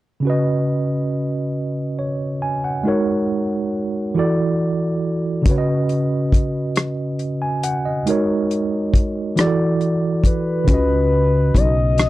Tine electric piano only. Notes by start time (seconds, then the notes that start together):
0.20 C#3 C#4
0.25 F#4 B4
0.30 D#5
1.99 C#5
2.42 G#5
2.64 F#5
2.84 G#3 D#4 F#4 A#4
2.88 C#5
4.14 E3 E4 F#4 A4
4.19 D5
5.42 C#3 C#4
5.46 F#4 B4
5.51 C#5
5.58 D#5
7.42 G#5
7.64 F#5
7.85 D#5
8.06 G#3 D#4 F#4 A#4
8.10 C#5
9.36 E3 E4 F#4 G#4
9.41 D5
9.46 A4
10.64 C#3 C#4
10.69 F#4 B4
10.74 D#5